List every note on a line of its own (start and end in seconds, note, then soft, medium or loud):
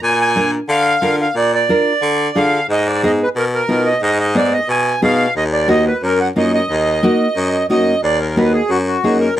0.03 0.56 A#2 medium
0.03 0.20 G#5 loud
0.21 0.51 G#5 loud
0.36 0.59 D4 medium
0.36 0.59 F4 medium
0.36 0.59 A#4 medium
0.69 0.95 D3 loud
0.69 1.16 F5 loud
1.01 1.28 D3 medium
1.01 1.25 D4 medium
1.01 1.25 F4 medium
1.01 1.26 A#4 medium
1.21 1.36 F5 medium
1.35 1.67 A#2 medium
1.35 1.52 D5 medium
1.54 2.39 D5 medium
1.69 1.92 D4 medium
1.69 1.92 F4 medium
1.69 1.93 A#4 medium
2.02 2.29 D3 medium
2.35 2.62 D3 medium
2.35 2.59 D4 medium
2.35 2.59 F4 medium
2.35 2.59 G#4 medium
2.35 2.67 F5 medium
2.69 3.22 G#2 medium
2.69 2.87 D#5 medium
2.87 3.02 D5 medium
3.03 3.26 B3 medium
3.03 3.26 D#4 medium
3.03 3.26 G#4 medium
3.03 3.12 D#5 medium
3.23 3.29 B4 medium
3.36 3.62 B2 medium
3.36 3.45 A#4 medium
3.55 3.88 A#4 medium
3.68 3.95 B2 medium
3.68 3.92 B3 medium
3.68 3.92 D#4 medium
3.68 3.92 F4 medium
3.86 4.02 D#5 medium
4.02 4.56 G#2 loud
4.02 4.18 D#5 medium
4.20 4.36 D#5 medium
4.35 4.59 B3 medium
4.35 4.59 D#4 medium
4.35 4.59 G#4 medium
4.35 4.53 D5 medium
4.53 4.68 D#5 medium
4.69 4.95 B2 medium
4.69 5.01 G#5 loud
5.02 5.29 B2 medium
5.02 5.25 B3 medium
5.02 5.26 D#4 medium
5.02 5.26 G#4 medium
5.02 5.34 F5 loud
5.36 5.89 D#2 medium
5.36 5.44 D#5 medium
5.53 5.68 D5 medium
5.68 5.92 A#3 medium
5.68 5.92 D#4 medium
5.68 5.92 F#4 medium
5.68 5.85 D#5 medium
5.87 6.02 B4 medium
6.03 6.29 F#2 medium
6.03 6.19 A#4 medium
6.21 6.28 F#5 medium
6.36 6.63 F#2 medium
6.36 6.59 A#3 medium
6.36 6.59 D#4 medium
6.36 6.60 F4 medium
6.36 6.52 D#5 medium
6.54 7.66 D#5 medium
6.69 7.01 D#2 medium
7.03 7.26 A#3 medium
7.03 7.26 D#4 medium
7.03 7.27 F#4 medium
7.37 7.63 F#2 medium
7.69 7.96 F#2 medium
7.69 7.93 A#3 medium
7.69 7.93 D#4 medium
7.69 7.93 F#4 medium
7.69 8.01 D#5 medium
8.03 8.56 D#2 medium
8.03 8.19 D5 medium
8.21 8.36 A#4 medium
8.37 8.60 A#3 medium
8.37 8.60 D#4 medium
8.37 8.60 F#4 medium
8.37 8.53 B4 medium
8.53 8.71 G#4 medium
8.70 8.97 F#2 medium
8.70 8.78 F#4 medium
8.86 9.18 F#4 medium
9.04 9.30 F#2 medium
9.04 9.27 A#3 medium
9.04 9.27 D#4 medium
9.04 9.27 G#4 medium
9.20 9.35 A#4 medium
9.36 9.40 D#2 medium
9.36 9.40 A#4 medium